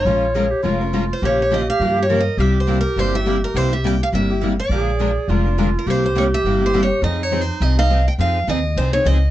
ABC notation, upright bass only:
X:1
M:4/4
L:1/8
Q:"Swing" 1/4=206
K:Fm
V:1 name="Upright bass" clef=bass
B,,,4 F,,,4 | B,,,4 G,,4 | C,,4 G,,,4 | C,,4 G,,,4 |
B,,,4 F,,,4 | C,,4 G,,,4 | F,,4 C,,4 | F,,2 E,,2 C,,2 D,,2 |]